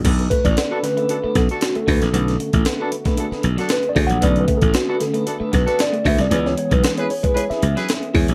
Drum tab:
CC |x---------------|----------------|----------------|----------------|
HH |xxxxx-xxx-xxxxox|xxxxx-xxx-xxxxox|xxxxx-xxx-xxxxox|x-xxxxoxxxxxxxox|
SD |----o-o---o-o--o|-o--o--o-o-oo---|----o-o---o-o--o|-o--o----o-oo---|
BD |o-oo------o---o-|---o---o------o-|o-oo------o---o-|---o---o------o-|